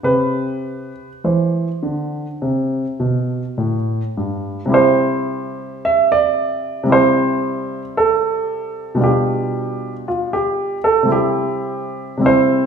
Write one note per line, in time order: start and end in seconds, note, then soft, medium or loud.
0.03 0.90 C3 soft
0.03 4.70 G4 soft
0.03 1.07 B4 medium
1.24 1.67 E3 soft
1.24 3.74 C5 soft
1.83 2.25 D3 soft
2.42 2.84 C3 soft
3.00 3.42 B2 soft
3.58 4.00 A2 soft
4.17 4.59 G2 soft
4.66 6.82 C3 soft
4.66 6.84 G3 soft
4.70 6.85 E4 soft
4.70 6.86 G4 soft
4.74 5.84 C5 medium
5.85 6.12 E5 medium
6.12 6.91 D5 medium
6.83 8.94 C3 soft
6.83 8.95 G3 soft
6.88 8.96 E4 soft
6.88 8.97 G4 soft
6.92 7.82 C5 medium
7.97 9.02 A4 medium
8.95 11.04 B2 soft
8.95 11.03 G3 soft
8.99 11.06 D4 soft
8.99 10.07 F4 soft
9.04 9.92 G4 medium
10.08 10.33 F4 medium
10.33 10.77 G4 medium
10.84 11.11 A4 medium
11.03 12.16 C3 soft
11.03 12.18 G3 soft
11.07 12.19 C4 soft
11.07 12.20 E4 soft
11.12 12.25 G4 medium
12.17 12.66 C3 soft
12.17 12.66 G3 soft
12.21 12.66 C4 soft
12.21 12.66 E4 soft
12.26 12.66 C5 medium